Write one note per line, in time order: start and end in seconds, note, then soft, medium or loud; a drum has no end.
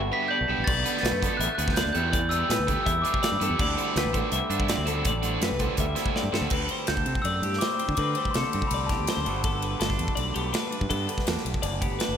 0.00 0.10 G1 medium
0.00 0.47 G2 medium
0.00 0.82 D3 medium
0.00 0.13 B3 medium
0.00 0.47 F#4 medium
0.00 0.30 E5 medium
0.12 0.36 B3 medium
0.12 0.23 B3 medium
0.12 0.36 D4 medium
0.12 0.36 G4 medium
0.12 0.36 B4 medium
0.12 0.21 B6 loud
0.23 0.49 D4 soft
0.28 1.01 B3 medium
0.28 0.49 D5 medium
0.28 0.67 G6 medium
0.41 0.48 B1 medium
0.48 0.57 B1 medium
0.48 0.65 G2 medium
0.48 0.67 B3 medium
0.48 0.67 D4 medium
0.48 0.67 G4 medium
0.48 0.67 A4 medium
0.48 0.67 B4 medium
0.58 0.66 A1 medium
0.64 0.83 B1 loud
0.64 0.84 B2 medium
0.64 1.04 D5 medium
0.64 0.99 A6 loud
0.64 kick loud
0.64 crash loud
0.83 1.20 D3 medium
0.83 1.09 B3 medium
0.83 1.10 D4 medium
0.83 1.09 F#4 medium
0.83 1.09 B4 loud
0.83 closed hi-hat medium
0.97 1.40 A6 loud
0.97 snare soft
1.01 1.11 B1 medium
1.01 1.11 G3 medium
1.01 1.22 B4 medium
1.01 closed hi-hat medium
1.06 snare loud
1.11 1.28 F#2 medium
1.11 1.39 A3 soft
1.21 1.75 D3 medium
1.21 1.46 B3 medium
1.21 1.46 D4 medium
1.21 1.46 F#4 medium
1.21 1.41 A4 medium
1.21 1.46 B4 medium
1.21 kick medium
1.21 closed hi-hat medium
1.37 1.48 A1 medium
1.37 1.49 G3 medium
1.37 1.77 E5 medium
1.37 1.54 F#6 medium
1.37 closed hi-hat loud
1.49 1.95 A3 medium
1.55 1.82 D2 medium
1.55 1.77 C3 medium
1.55 1.82 F#4 medium
1.55 1.82 B4 loud
1.55 1.76 F#6 medium
1.55 closed hi-hat medium
1.59 1.82 B3 medium
1.59 1.83 D4 medium
1.68 kick medium
1.68 snare soft
1.74 1.95 D3 medium
1.74 1.95 D5 medium
1.74 1.83 G6 medium
1.74 snare loud
1.74 closed hi-hat loud
1.86 1.94 D2 medium
1.93 3.38 E2 medium
1.93 2.43 E2 medium
1.93 2.19 B3 medium
1.93 2.19 E4 medium
1.93 2.19 G4 medium
1.93 2.13 A4 medium
1.93 2.19 B4 medium
1.93 2.31 G6 loud
1.93 closed hi-hat medium
2.12 2.48 E3 medium
2.12 2.49 D5 medium
2.12 kick loud
2.12 closed hi-hat loud
2.29 2.66 G3 medium
2.29 2.55 B3 medium
2.29 2.55 E4 medium
2.29 2.55 G4 medium
2.29 2.55 B4 loud
2.29 2.82 E6 medium
2.29 closed hi-hat medium
2.49 2.57 A2 loud
2.49 3.58 E3 medium
2.49 2.68 B4 medium
2.49 snare loud
2.49 closed hi-hat loud
2.59 2.75 D2 medium
2.67 3.22 G3 medium
2.67 2.92 B3 medium
2.67 2.92 E4 medium
2.67 2.92 G4 medium
2.67 2.86 A4 medium
2.67 2.92 B4 medium
2.67 kick medium
2.67 closed hi-hat medium
2.83 3.02 E2 loud
2.83 3.60 E4 medium
2.83 3.22 E5 medium
2.83 2.92 E6 medium
2.83 kick medium
2.83 closed hi-hat loud
3.02 3.28 B3 medium
3.02 3.43 D4 medium
3.02 3.28 E4 medium
3.02 3.28 G4 medium
3.02 3.28 B4 loud
3.02 3.22 D6 medium
3.02 closed hi-hat medium
3.14 kick medium
3.21 3.59 G3 medium
3.21 3.41 D5 medium
3.21 3.47 E6 medium
3.21 snare loud
3.21 closed hi-hat loud
3.32 3.40 G2 medium
3.40 3.57 E2 medium
3.40 3.49 G2 medium
3.40 3.59 B3 medium
3.40 3.59 E4 medium
3.40 3.59 G4 medium
3.40 3.60 A4 medium
3.40 3.59 B4 medium
3.40 closed hi-hat medium
3.50 3.58 E2 medium
3.58 5.05 D2 medium
3.58 3.75 D2 loud
3.58 3.76 D3 medium
3.58 3.98 G3 medium
3.58 4.69 C4 medium
3.58 4.49 E4 medium
3.58 3.97 D5 medium
3.58 kick loud
3.58 crash loud
3.76 4.14 D3 medium
3.76 4.02 A3 medium
3.76 4.02 D4 medium
3.76 4.02 F#4 loud
3.76 4.01 C5 loud
3.76 closed hi-hat medium
3.96 4.04 D2 medium
3.96 4.32 G3 medium
3.96 4.16 B4 medium
3.96 snare loud
3.96 closed hi-hat loud
4.05 4.21 A1 medium
4.13 5.23 D3 medium
4.13 4.38 A3 medium
4.13 4.38 D4 medium
4.13 4.38 F#4 medium
4.13 4.33 A4 medium
4.13 4.37 C5 medium
4.13 kick medium
4.13 closed hi-hat medium
4.32 4.40 C2 medium
4.32 4.87 G3 medium
4.32 4.69 E5 medium
4.32 closed hi-hat medium
4.50 4.74 G2 medium
4.50 4.74 A3 medium
4.50 4.61 D4 medium
4.50 4.74 D4 medium
4.50 4.74 F#4 loud
4.50 4.74 C5 medium
4.50 closed hi-hat medium
4.60 5.06 E4 medium
4.60 kick medium
4.68 5.09 C4 medium
4.68 4.88 D5 medium
4.68 snare loud
4.68 closed hi-hat loud
4.78 5.01 D2 medium
4.86 5.42 G3 medium
4.86 5.11 A3 medium
4.86 5.11 D4 medium
4.86 5.10 F#4 medium
4.86 5.06 A4 medium
4.86 5.10 C5 medium
4.86 closed hi-hat medium
5.05 5.37 A1 loud
5.05 6.49 D2 medium
5.05 5.43 D5 medium
5.05 kick loud
5.05 closed hi-hat loud
5.23 5.60 D3 medium
5.23 5.47 A3 medium
5.23 5.47 D4 medium
5.23 5.47 F#4 medium
5.23 5.47 C5 loud
5.23 closed hi-hat medium
5.42 5.50 F#2 medium
5.42 5.78 G3 medium
5.42 5.61 B4 medium
5.42 snare loud
5.42 closed hi-hat loud
5.52 5.67 C2 medium
5.59 6.87 D3 medium
5.59 5.84 A3 medium
5.59 5.84 D4 medium
5.59 5.84 F#4 medium
5.59 5.79 A4 medium
5.59 5.84 C5 medium
5.59 kick medium
5.59 closed hi-hat medium
5.77 5.94 D2 medium
5.77 6.32 G3 medium
5.77 6.16 E5 medium
5.77 kick medium
5.77 closed hi-hat loud
5.96 6.20 A3 medium
5.96 6.20 D4 medium
5.96 6.49 E4 medium
5.96 6.20 F#4 medium
5.96 6.20 C5 medium
5.96 snare soft
5.96 closed hi-hat medium
6.06 kick medium
6.16 6.50 C4 medium
6.16 6.34 D5 medium
6.16 snare medium
6.24 6.32 G2 medium
6.32 6.41 G2 medium
6.32 6.69 G3 medium
6.32 6.52 A3 medium
6.32 6.52 D4 medium
6.32 6.51 F#4 medium
6.32 6.52 A4 medium
6.32 6.51 C5 medium
6.32 snare medium
6.41 6.50 D2 medium
6.50 7.96 D2 medium
6.50 6.67 D2 medium
6.50 7.07 C4 medium
6.50 6.70 B4 medium
6.50 kick loud
6.50 crash loud
6.69 7.61 G3 medium
6.69 6.89 C5 medium
6.69 ride medium
6.87 7.04 D2 medium
6.87 8.34 D3 medium
6.87 7.25 A4 medium
6.87 7.26 G6 medium
6.87 snare loud
6.87 ride medium
6.97 kick medium
7.06 7.14 C3 medium
7.06 7.78 C4 medium
7.06 ride medium
7.15 kick medium
7.22 7.40 F#2 medium
7.22 7.43 D5 medium
7.22 7.61 E6 medium
7.22 ride medium
7.42 7.58 G2 medium
7.42 7.95 A2 medium
7.42 7.62 G4 medium
7.42 ride medium
7.53 snare soft
7.59 8.17 G3 medium
7.59 7.98 C5 medium
7.59 7.94 D6 medium
7.59 snare loud
7.59 ride medium
7.79 7.96 C4 medium
7.79 ride medium
7.88 7.96 D3 medium
7.88 kick medium
7.95 8.89 D2 medium
7.95 8.14 D3 loud
7.95 8.53 C4 medium
7.95 8.16 B4 medium
7.95 8.34 D6 medium
7.95 kick medium
7.95 ride loud
8.15 9.26 G3 medium
8.15 8.35 C5 medium
8.15 ride medium
8.25 kick medium
8.31 8.70 C6 medium
8.31 ride medium
8.35 8.43 C3 medium
8.35 9.25 D3 medium
8.35 8.72 A4 medium
8.35 snare loud
8.53 8.62 G2 medium
8.53 9.24 C4 medium
8.53 ride medium
8.62 kick medium
8.67 8.95 C2 medium
8.67 8.76 B5 medium
8.67 ride loud
8.74 8.91 D5 medium
8.86 9.08 E2 medium
8.86 9.08 G4 medium
8.86 9.22 A5 medium
8.86 kick medium
8.86 snare soft
8.86 ride medium
8.99 9.07 D2 medium
9.07 9.26 F#2 medium
9.07 9.44 C5 medium
9.07 snare loud
9.07 ride medium
9.17 9.25 D2 medium
9.25 9.74 G1 medium
9.25 10.70 G2 medium
9.25 9.62 D3 medium
9.25 9.45 B3 medium
9.25 9.79 D4 medium
9.25 10.71 F#4 medium
9.25 ride medium
9.44 9.78 B3 medium
9.44 9.63 A4 medium
9.44 kick loud
9.44 ride medium
9.62 11.07 D3 medium
9.62 9.79 B4 medium
9.62 ride medium
9.79 9.96 G1 medium
9.79 9.89 B3 medium
9.79 10.15 A4 medium
9.79 snare loud
9.79 ride medium
9.89 10.51 D4 soft
9.89 kick medium
9.89 snare soft
9.99 10.07 E2 medium
9.99 ride medium
10.08 kick medium
10.15 10.33 B1 medium
10.15 10.72 D2 medium
10.15 10.34 D5 medium
10.15 ride medium
10.34 10.52 B1 medium
10.34 10.70 B3 medium
10.34 10.53 G4 medium
10.34 ride medium
10.52 10.70 D4 medium
10.52 10.89 B4 medium
10.52 snare loud
10.52 ride medium
10.71 11.63 G2 medium
10.71 11.27 D4 soft
10.71 ride medium
10.81 10.89 G2 medium
10.81 kick medium
10.90 11.06 G2 loud
10.90 11.80 B3 medium
10.90 11.09 A4 medium
10.90 kick medium
10.90 ride medium
11.08 12.17 D3 medium
11.08 11.27 B4 medium
11.08 ride medium
11.18 kick medium
11.18 snare soft
11.27 11.36 E2 medium
11.27 12.00 D4 medium
11.27 11.62 A4 medium
11.27 snare loud
11.27 ride medium
11.37 snare soft
11.45 11.53 B1 medium
11.45 ride medium
11.54 kick medium
11.62 11.87 F#1 medium
11.62 12.17 D2 medium
11.62 11.81 D5 medium
11.62 ride medium
11.81 12.16 B3 medium
11.81 12.00 G4 medium
11.81 kick medium
11.81 ride medium
11.91 11.99 G1 medium
11.99 12.17 D4 medium
11.99 12.17 B4 medium
11.99 snare loud
11.99 ride medium
12.09 12.17 F#1 medium